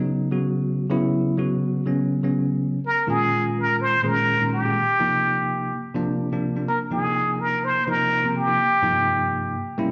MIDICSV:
0, 0, Header, 1, 3, 480
1, 0, Start_track
1, 0, Tempo, 479233
1, 921, Time_signature, 4, 2, 24, 8
1, 9931, End_track
2, 0, Start_track
2, 0, Title_t, "Muted trumpet"
2, 0, Program_c, 0, 59
2, 2867, Note_on_c, 0, 70, 85
2, 3081, Note_off_c, 0, 70, 0
2, 3105, Note_on_c, 0, 68, 77
2, 3544, Note_off_c, 0, 68, 0
2, 3600, Note_on_c, 0, 70, 81
2, 3818, Note_on_c, 0, 72, 91
2, 3833, Note_off_c, 0, 70, 0
2, 4068, Note_on_c, 0, 70, 91
2, 4083, Note_off_c, 0, 72, 0
2, 4530, Note_off_c, 0, 70, 0
2, 4536, Note_on_c, 0, 67, 81
2, 5935, Note_off_c, 0, 67, 0
2, 6695, Note_on_c, 0, 70, 84
2, 6802, Note_off_c, 0, 70, 0
2, 6936, Note_on_c, 0, 68, 78
2, 7412, Note_on_c, 0, 70, 83
2, 7427, Note_off_c, 0, 68, 0
2, 7658, Note_on_c, 0, 72, 88
2, 7673, Note_off_c, 0, 70, 0
2, 7900, Note_on_c, 0, 70, 94
2, 7915, Note_off_c, 0, 72, 0
2, 8369, Note_on_c, 0, 67, 86
2, 8384, Note_off_c, 0, 70, 0
2, 9804, Note_off_c, 0, 67, 0
2, 9931, End_track
3, 0, Start_track
3, 0, Title_t, "Tine electric piano"
3, 0, Program_c, 1, 4
3, 0, Note_on_c, 1, 49, 82
3, 0, Note_on_c, 1, 54, 70
3, 0, Note_on_c, 1, 59, 72
3, 0, Note_on_c, 1, 63, 88
3, 286, Note_off_c, 1, 49, 0
3, 287, Note_off_c, 1, 54, 0
3, 289, Note_off_c, 1, 59, 0
3, 292, Note_off_c, 1, 63, 0
3, 314, Note_on_c, 1, 49, 79
3, 318, Note_on_c, 1, 54, 67
3, 321, Note_on_c, 1, 59, 65
3, 323, Note_on_c, 1, 66, 85
3, 858, Note_off_c, 1, 49, 0
3, 860, Note_off_c, 1, 54, 0
3, 861, Note_off_c, 1, 59, 0
3, 862, Note_off_c, 1, 66, 0
3, 900, Note_on_c, 1, 49, 103
3, 904, Note_on_c, 1, 54, 92
3, 911, Note_on_c, 1, 59, 101
3, 913, Note_on_c, 1, 64, 111
3, 1346, Note_off_c, 1, 49, 0
3, 1348, Note_off_c, 1, 54, 0
3, 1352, Note_off_c, 1, 59, 0
3, 1353, Note_off_c, 1, 64, 0
3, 1378, Note_on_c, 1, 54, 71
3, 1381, Note_on_c, 1, 49, 78
3, 1384, Note_on_c, 1, 59, 73
3, 1392, Note_on_c, 1, 66, 90
3, 1826, Note_off_c, 1, 54, 0
3, 1827, Note_off_c, 1, 49, 0
3, 1829, Note_off_c, 1, 59, 0
3, 1833, Note_off_c, 1, 66, 0
3, 1859, Note_on_c, 1, 49, 79
3, 1866, Note_on_c, 1, 54, 69
3, 1872, Note_on_c, 1, 59, 70
3, 1874, Note_on_c, 1, 61, 84
3, 2201, Note_off_c, 1, 49, 0
3, 2204, Note_off_c, 1, 54, 0
3, 2208, Note_off_c, 1, 59, 0
3, 2209, Note_off_c, 1, 61, 0
3, 2237, Note_on_c, 1, 49, 78
3, 2239, Note_on_c, 1, 54, 67
3, 2244, Note_on_c, 1, 59, 69
3, 2245, Note_on_c, 1, 61, 76
3, 2782, Note_off_c, 1, 49, 0
3, 2783, Note_off_c, 1, 54, 0
3, 2785, Note_off_c, 1, 59, 0
3, 2786, Note_off_c, 1, 61, 0
3, 3075, Note_on_c, 1, 51, 76
3, 3076, Note_on_c, 1, 56, 75
3, 3078, Note_on_c, 1, 46, 82
3, 3081, Note_on_c, 1, 61, 73
3, 3083, Note_on_c, 1, 65, 89
3, 3952, Note_off_c, 1, 51, 0
3, 3952, Note_off_c, 1, 56, 0
3, 3953, Note_off_c, 1, 46, 0
3, 3955, Note_off_c, 1, 61, 0
3, 3956, Note_off_c, 1, 65, 0
3, 4032, Note_on_c, 1, 46, 83
3, 4036, Note_on_c, 1, 51, 79
3, 4041, Note_on_c, 1, 56, 73
3, 4042, Note_on_c, 1, 68, 93
3, 4043, Note_on_c, 1, 61, 73
3, 4370, Note_off_c, 1, 46, 0
3, 4372, Note_off_c, 1, 51, 0
3, 4374, Note_off_c, 1, 56, 0
3, 4375, Note_off_c, 1, 68, 0
3, 4376, Note_off_c, 1, 61, 0
3, 4404, Note_on_c, 1, 46, 65
3, 4408, Note_on_c, 1, 51, 59
3, 4409, Note_on_c, 1, 56, 58
3, 4411, Note_on_c, 1, 61, 62
3, 4414, Note_on_c, 1, 63, 70
3, 4625, Note_off_c, 1, 46, 0
3, 4627, Note_off_c, 1, 51, 0
3, 4628, Note_off_c, 1, 56, 0
3, 4629, Note_off_c, 1, 61, 0
3, 4630, Note_off_c, 1, 63, 0
3, 4650, Note_on_c, 1, 46, 66
3, 4658, Note_on_c, 1, 51, 58
3, 4658, Note_on_c, 1, 61, 53
3, 4659, Note_on_c, 1, 68, 66
3, 4660, Note_on_c, 1, 56, 59
3, 4766, Note_off_c, 1, 46, 0
3, 4770, Note_off_c, 1, 51, 0
3, 4771, Note_off_c, 1, 61, 0
3, 4771, Note_off_c, 1, 68, 0
3, 4772, Note_off_c, 1, 56, 0
3, 5005, Note_on_c, 1, 53, 76
3, 5006, Note_on_c, 1, 48, 83
3, 5009, Note_on_c, 1, 58, 76
3, 5010, Note_on_c, 1, 63, 85
3, 5729, Note_off_c, 1, 48, 0
3, 5729, Note_off_c, 1, 53, 0
3, 5730, Note_off_c, 1, 58, 0
3, 5731, Note_off_c, 1, 63, 0
3, 5958, Note_on_c, 1, 48, 98
3, 5964, Note_on_c, 1, 53, 89
3, 5966, Note_on_c, 1, 58, 92
3, 5970, Note_on_c, 1, 62, 111
3, 6294, Note_off_c, 1, 48, 0
3, 6297, Note_off_c, 1, 53, 0
3, 6298, Note_off_c, 1, 58, 0
3, 6300, Note_off_c, 1, 62, 0
3, 6327, Note_on_c, 1, 48, 79
3, 6334, Note_on_c, 1, 53, 73
3, 6335, Note_on_c, 1, 58, 74
3, 6340, Note_on_c, 1, 62, 91
3, 6547, Note_off_c, 1, 48, 0
3, 6551, Note_off_c, 1, 53, 0
3, 6551, Note_off_c, 1, 58, 0
3, 6554, Note_off_c, 1, 62, 0
3, 6570, Note_on_c, 1, 53, 56
3, 6571, Note_on_c, 1, 48, 64
3, 6575, Note_on_c, 1, 58, 59
3, 6576, Note_on_c, 1, 62, 68
3, 6687, Note_off_c, 1, 48, 0
3, 6687, Note_off_c, 1, 53, 0
3, 6689, Note_off_c, 1, 58, 0
3, 6690, Note_off_c, 1, 62, 0
3, 6919, Note_on_c, 1, 53, 77
3, 6921, Note_on_c, 1, 48, 79
3, 6927, Note_on_c, 1, 63, 87
3, 6928, Note_on_c, 1, 58, 79
3, 7793, Note_off_c, 1, 53, 0
3, 7794, Note_off_c, 1, 48, 0
3, 7797, Note_off_c, 1, 58, 0
3, 7797, Note_off_c, 1, 63, 0
3, 7883, Note_on_c, 1, 53, 77
3, 7884, Note_on_c, 1, 48, 86
3, 7885, Note_on_c, 1, 58, 75
3, 7891, Note_on_c, 1, 63, 98
3, 8215, Note_off_c, 1, 48, 0
3, 8215, Note_off_c, 1, 53, 0
3, 8216, Note_off_c, 1, 58, 0
3, 8219, Note_off_c, 1, 63, 0
3, 8245, Note_on_c, 1, 48, 71
3, 8245, Note_on_c, 1, 53, 58
3, 8250, Note_on_c, 1, 58, 62
3, 8256, Note_on_c, 1, 60, 75
3, 8464, Note_off_c, 1, 48, 0
3, 8464, Note_off_c, 1, 53, 0
3, 8467, Note_off_c, 1, 58, 0
3, 8470, Note_off_c, 1, 60, 0
3, 8481, Note_on_c, 1, 48, 64
3, 8486, Note_on_c, 1, 53, 59
3, 8486, Note_on_c, 1, 58, 58
3, 8491, Note_on_c, 1, 63, 68
3, 8601, Note_off_c, 1, 48, 0
3, 8603, Note_off_c, 1, 53, 0
3, 8603, Note_off_c, 1, 58, 0
3, 8606, Note_off_c, 1, 63, 0
3, 8836, Note_on_c, 1, 43, 79
3, 8837, Note_on_c, 1, 48, 74
3, 8840, Note_on_c, 1, 53, 75
3, 8844, Note_on_c, 1, 63, 87
3, 8847, Note_on_c, 1, 58, 73
3, 9559, Note_off_c, 1, 43, 0
3, 9560, Note_off_c, 1, 48, 0
3, 9562, Note_off_c, 1, 53, 0
3, 9563, Note_off_c, 1, 63, 0
3, 9565, Note_off_c, 1, 58, 0
3, 9794, Note_on_c, 1, 48, 94
3, 9795, Note_on_c, 1, 55, 86
3, 9796, Note_on_c, 1, 58, 93
3, 9801, Note_on_c, 1, 61, 85
3, 9806, Note_on_c, 1, 64, 111
3, 9931, Note_off_c, 1, 48, 0
3, 9931, Note_off_c, 1, 55, 0
3, 9931, Note_off_c, 1, 58, 0
3, 9931, Note_off_c, 1, 61, 0
3, 9931, Note_off_c, 1, 64, 0
3, 9931, End_track
0, 0, End_of_file